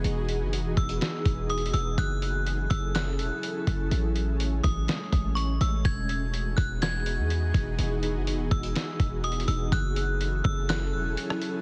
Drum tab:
HH |x-----x-----x-----x--x--x-----x-----x-x-x-x-----|x-----x-----x-----x-----x-----x-----x-----x-----|x-----x-----x-----x-----x-----x-----x-----x-----|x-----x-----x-----x-----x-----x-----x-----x-----|
SD |------------------------o-----------------------|------------------------o-----------------------|------------------------o-----------------------|------------------------o-----------------------|
BD |------------------o-----------o-----------------|o-----------------o-----------------------o-----|------------------o-----------o-----------------|o-----------------o-----------------------o-----|

HH |x-----x-----x-----x--x--x-----x-----x-x-x-x-----|x-----x-----x-----------x-----------x-----x-----|
SD |------------------------o-----------------------|------------------------o--------------r--------|
BD |------------------o-----------o-----------------|o-----------------o-----------------------------|